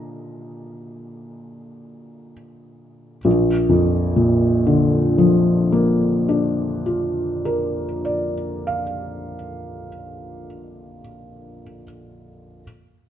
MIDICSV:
0, 0, Header, 1, 2, 480
1, 0, Start_track
1, 0, Key_signature, -2, "major"
1, 0, Tempo, 1886792
1, 825, Time_signature, 4, 2, 24, 8
1, 826, Tempo, 1775148
1, 2266, Tempo, 1807229
1, 3466, End_track
2, 0, Start_track
2, 0, Title_t, "Felt piano"
2, 0, Program_c, 0, 0
2, 0, Control_c, 0, 64, 127
2, 0, Note_on_c, 0, 46, 44
2, 0, Note_on_c, 0, 50, 35
2, 0, Note_on_c, 0, 58, 36
2, 0, Note_on_c, 0, 65, 36
2, 0, Note_on_c, 0, 82, 61
2, 587, Note_off_c, 0, 82, 0
2, 808, Note_off_c, 0, 46, 0
2, 810, Note_off_c, 0, 50, 0
2, 811, Note_off_c, 0, 58, 0
2, 813, Note_off_c, 0, 65, 0
2, 826, Note_on_c, 0, 34, 45
2, 832, Control_c, 0, 64, 0
2, 890, Control_c, 0, 64, 127
2, 946, Note_on_c, 0, 41, 37
2, 1073, Note_on_c, 0, 46, 43
2, 1210, Note_on_c, 0, 50, 40
2, 1349, Note_on_c, 0, 53, 39
2, 1496, Note_on_c, 0, 58, 40
2, 1648, Note_on_c, 0, 62, 35
2, 1803, Note_on_c, 0, 65, 32
2, 1949, Note_off_c, 0, 34, 0
2, 1963, Note_on_c, 0, 70, 37
2, 2069, Note_off_c, 0, 41, 0
2, 2124, Note_on_c, 0, 74, 32
2, 2196, Note_off_c, 0, 46, 0
2, 2292, Note_on_c, 0, 77, 36
2, 2331, Note_off_c, 0, 50, 0
2, 2469, Note_off_c, 0, 53, 0
2, 2612, Note_off_c, 0, 58, 0
2, 2762, Note_off_c, 0, 62, 0
2, 2914, Note_off_c, 0, 65, 0
2, 3072, Note_off_c, 0, 70, 0
2, 3130, Note_off_c, 0, 74, 0
2, 3131, Note_off_c, 0, 77, 0
2, 3345, Control_c, 0, 64, 0
2, 3466, End_track
0, 0, End_of_file